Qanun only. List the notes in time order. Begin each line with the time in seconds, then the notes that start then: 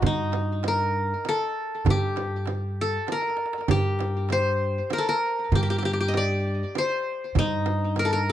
Already playing: F#4
0.06 D#4
0.68 A#4
1.29 A4
1.90 G4
2.81 A4
3.12 A#4
3.71 G4
4.32 C5
4.93 A#4
4.98 A4
5.09 A#4
5.55 G4
5.63 G4
5.70 G4
5.78 G4
5.85 G4
5.93 G4
6.01 G4
6.08 D#5
6.17 D5
6.78 C5
7.39 D#4
7.99 A#4
8.05 A4
8.13 A#4